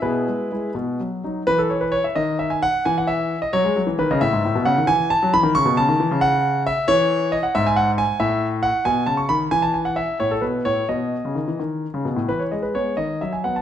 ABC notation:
X:1
M:6/8
L:1/16
Q:3/8=89
K:E
V:1 name="Grand piano"
[EGB]6 z6 | B A c B c e d2 e g f2 | g f e3 d c4 B d | e4 f2 g2 a2 b2 |
c'2 a4 f4 e2 | c4 d f e g f2 g2 | e4 f2 g2 a c' b2 | g a g f e2 c A B2 c2 |
d6 z6 | B c d B c2 d2 e g f a |]
V:2 name="Grand piano" clef=bass
B,,2 G,2 [G,E]2 B,,2 F,2 [F,D]2 | E,6 D,6 | E,6 F, G, F, E, D, C, | A,, G,, A,, B,, C, D, E,3 F, E, D, |
C, B,, C, D, E, C,6- C, | E,6 G,,6 | A,,6 B,,2 C,2 D,2 | E,6 A,,2 B,,2 A,,2 |
B,,3 C, D, E, D,3 C, B,, A,, | E,2 G,2 [G,B,]2 D,2 F,2 [F,B,]2 |]